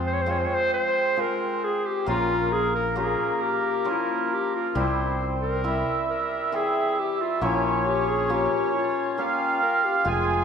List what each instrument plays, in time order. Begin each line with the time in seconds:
Already playing: fingered electric bass F2, hammered dulcimer G#3, accordion C4
0.07 clarinet C5
0.14 clarinet C#5
0.22 clarinet C5
0.26 hammered dulcimer G#3 C4 F4
0.31 clarinet C#5
0.38 clarinet C5
0.46 clarinet C#5
0.54 clarinet C5
0.73 clarinet C5
1.17 hammered dulcimer G#3 C4 F4, clarinet A#4
1.64 clarinet G#4
1.86 clarinet G4
2.06 fingered electric bass A#1, accordion A#3, hammered dulcimer A#3 C#4 F4, clarinet F4
2.52 clarinet G#4
2.75 clarinet A#4
2.96 hammered dulcimer A#3 C#4 F4, clarinet G#4
3.42 clarinet G4
3.85 hammered dulcimer F3 A#3 C#4
3.89 clarinet E4
4.34 clarinet G4
4.55 clarinet F4
4.75 fingered electric bass C2, hammered dulcimer G3 C4 E4, accordion C4, clarinet E4
5.42 clarinet A#4
5.64 hammered dulcimer G3 C4 E4, accordion E4
6.10 clarinet A#4
6.52 hammered dulcimer E3 C4 G5, clarinet G#4
6.99 clarinet G4
7.21 clarinet F4
7.41 fingered electric bass A#1, hammered dulcimer F3 A#3 C#4, accordion C#4, clarinet E4
7.86 clarinet G4
8.08 clarinet G#4
8.29 hammered dulcimer A#3 C#4 F4, clarinet G4
8.74 clarinet F4
9.18 hammered dulcimer A#3 C#4 G4, clarinet C#4, accordion F4
9.62 clarinet A#4
9.84 clarinet G4
9.98 clarinet G4
10.04 fingered electric bass F1, hammered dulcimer G#3 C4 F4, clarinet F4, accordion G#4